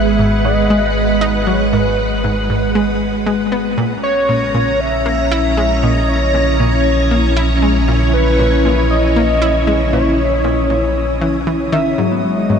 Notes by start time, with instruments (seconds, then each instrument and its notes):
Already playing: sub bass G#1, string machine G#3 G#4 B4 F#5, analog synth lead E5, synth texture D#6
0.19 synth arpeggio sound G#2
0.45 synth arpeggio sound G#2, analog synth lead D#5
0.70 synth arpeggio sound G#3
1.21 synth arpeggio sound D#4
1.47 synth arpeggio sound F#3, analog synth lead C#5
1.73 synth arpeggio sound G#2, analog synth lead B4
2.24 synth arpeggio sound G#2
2.50 synth arpeggio sound G#2
2.75 synth arpeggio sound G#3
3.27 synth arpeggio sound G#3
3.52 synth arpeggio sound B3
3.78 sub bass A#1, synth arpeggio sound A#2, string machine C#4
3.84 string machine A#5
4.03 string machine C#5, analog synth lead C#5
4.29 synth arpeggio sound A#2
4.54 synth arpeggio sound A#2
4.76 string machine E4
4.80 analog synth lead E5
5.06 synth arpeggio sound A#3
5.32 synth arpeggio sound E4
5.57 synth arpeggio sound G#3
5.83 synth arpeggio sound A#2, analog synth lead D#5
6.09 analog synth lead C#5
6.34 synth arpeggio sound A#2
6.60 synth arpeggio sound A#2
7.11 synth arpeggio sound A#3
7.37 synth arpeggio sound E4
7.62 synth arpeggio sound G#3
7.88 synth arpeggio sound A#2
8.14 analog synth lead B4
8.39 synth arpeggio sound A#2
8.65 synth arpeggio sound A#2
8.90 analog synth lead D#5
9.16 synth arpeggio sound A#3
9.42 synth arpeggio sound E4
9.67 synth arpeggio sound G#3
9.93 synth arpeggio sound A#2, analog synth lead C#5
10.44 synth arpeggio sound A#2
10.70 synth arpeggio sound A#2
11.21 synth arpeggio sound E3
11.47 synth arpeggio sound E3
11.72 synth arpeggio sound D#3, analog synth lead E5
11.98 sub bass G#1, synth arpeggio sound G#2, harp F#3, string machine G#3, synth texture D#5
12.11 harp B3
12.24 harp F#3, string machine B4
12.37 harp D#4, string machine G#4
12.49 synth arpeggio sound G#2, harp F#3